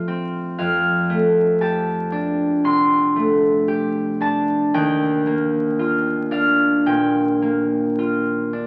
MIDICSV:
0, 0, Header, 1, 2, 480
1, 0, Start_track
1, 0, Tempo, 1029160
1, 273, Time_signature, 4, 2, 24, 8
1, 1719, Tempo, 1060071
1, 3159, Tempo, 1107011
1, 3941, End_track
2, 0, Start_track
2, 0, Title_t, "Harp"
2, 0, Program_c, 0, 46
2, 0, Note_on_c, 0, 45, 52
2, 0, Note_on_c, 0, 53, 45
2, 0, Note_on_c, 0, 57, 37
2, 0, Note_on_c, 0, 65, 47
2, 0, Note_on_c, 0, 74, 62
2, 0, Note_on_c, 0, 77, 64
2, 36, Note_on_c, 0, 60, 46
2, 204, Note_off_c, 0, 45, 0
2, 206, Note_off_c, 0, 77, 0
2, 273, Note_on_c, 0, 77, 62
2, 275, Note_on_c, 0, 41, 50
2, 506, Note_off_c, 0, 57, 0
2, 512, Note_on_c, 0, 57, 44
2, 687, Note_off_c, 0, 74, 0
2, 751, Note_on_c, 0, 81, 68
2, 754, Note_on_c, 0, 67, 43
2, 989, Note_on_c, 0, 62, 47
2, 1147, Note_off_c, 0, 53, 0
2, 1233, Note_on_c, 0, 48, 44
2, 1235, Note_on_c, 0, 84, 77
2, 1468, Note_off_c, 0, 57, 0
2, 1473, Note_on_c, 0, 57, 37
2, 1620, Note_off_c, 0, 65, 0
2, 1711, Note_off_c, 0, 67, 0
2, 1717, Note_on_c, 0, 67, 50
2, 1851, Note_off_c, 0, 60, 0
2, 1950, Note_off_c, 0, 62, 0
2, 1952, Note_off_c, 0, 81, 0
2, 1954, Note_on_c, 0, 62, 44
2, 1959, Note_on_c, 0, 81, 70
2, 2081, Note_off_c, 0, 77, 0
2, 2083, Note_off_c, 0, 41, 0
2, 2197, Note_on_c, 0, 39, 54
2, 2198, Note_on_c, 0, 79, 63
2, 2219, Note_off_c, 0, 57, 0
2, 2220, Note_off_c, 0, 48, 0
2, 2220, Note_off_c, 0, 81, 0
2, 2220, Note_off_c, 0, 84, 0
2, 2435, Note_on_c, 0, 58, 39
2, 2673, Note_on_c, 0, 65, 45
2, 2902, Note_off_c, 0, 62, 0
2, 2908, Note_on_c, 0, 62, 49
2, 2912, Note_on_c, 0, 77, 63
2, 3153, Note_off_c, 0, 79, 0
2, 3156, Note_on_c, 0, 46, 45
2, 3158, Note_on_c, 0, 79, 63
2, 3395, Note_off_c, 0, 58, 0
2, 3400, Note_on_c, 0, 58, 41
2, 3469, Note_off_c, 0, 67, 0
2, 3640, Note_off_c, 0, 65, 0
2, 3645, Note_on_c, 0, 65, 46
2, 3876, Note_off_c, 0, 62, 0
2, 3881, Note_on_c, 0, 62, 42
2, 3929, Note_off_c, 0, 39, 0
2, 3941, Note_off_c, 0, 46, 0
2, 3941, Note_off_c, 0, 58, 0
2, 3941, Note_off_c, 0, 62, 0
2, 3941, Note_off_c, 0, 65, 0
2, 3941, Note_off_c, 0, 77, 0
2, 3941, Note_off_c, 0, 79, 0
2, 3941, End_track
0, 0, End_of_file